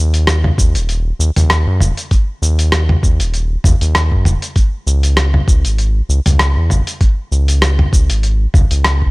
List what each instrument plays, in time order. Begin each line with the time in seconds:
Already playing: analog synth bass D#2
0.14 closed hi-hat, shaker
0.27 cross-stick, closed hi-hat, shaker
0.44 mid tom
0.58 analog synth bass D#2, kick, shaker
0.75 analog synth bass D#1, closed hi-hat, shaker
0.89 closed hi-hat, shaker
1.19 analog synth bass D#2, shaker
1.36 analog synth bass D#2, closed hi-hat, mid tom, shaker
1.50 cross-stick, closed hi-hat, shaker
1.67 analog synth bass F#2
1.80 analog synth bass D#1, mid tom, shaker
1.97 closed hi-hat, shaker
2.11 kick, closed hi-hat, shaker
2.42 analog synth bass D#2, shaker
2.59 closed hi-hat, shaker
2.72 cross-stick, closed hi-hat, shaker
2.89 mid tom
3.03 analog synth bass D#2, kick, shaker
3.20 analog synth bass D#1, closed hi-hat, shaker
3.34 closed hi-hat, shaker
3.64 analog synth bass D#2, kick, mid tom, shaker
3.81 analog synth bass D#2, closed hi-hat, shaker
3.95 cross-stick, closed hi-hat, shaker
4.12 analog synth bass F#2, kick
4.25 analog synth bass D#1, mid tom, shaker
4.42 closed hi-hat, shaker
4.56 kick, closed hi-hat, shaker
4.87 analog synth bass C#2, shaker
5.03 closed hi-hat, shaker
5.17 cross-stick, closed hi-hat, shaker
5.34 mid tom
5.48 analog synth bass C#2, kick, shaker
5.65 analog synth bass G#1, closed hi-hat, shaker
5.78 closed hi-hat, shaker
6.09 analog synth bass C#2, shaker
6.26 analog synth bass C#2, closed hi-hat, mid tom, shaker
6.39 cross-stick, closed hi-hat, shaker
6.57 analog synth bass E2
6.70 analog synth bass G#1, mid tom, shaker
6.87 closed hi-hat, shaker
7.01 kick, closed hi-hat, shaker
7.32 analog synth bass C#2, shaker
7.48 closed hi-hat, shaker
7.62 cross-stick, closed hi-hat, shaker
7.79 mid tom
7.93 analog synth bass C#2, kick, shaker
8.10 analog synth bass G#1, closed hi-hat, shaker
8.23 closed hi-hat, shaker
8.54 analog synth bass C#2, kick, mid tom, shaker
8.71 analog synth bass C#2, closed hi-hat, shaker
8.84 cross-stick, closed hi-hat, shaker
9.02 kick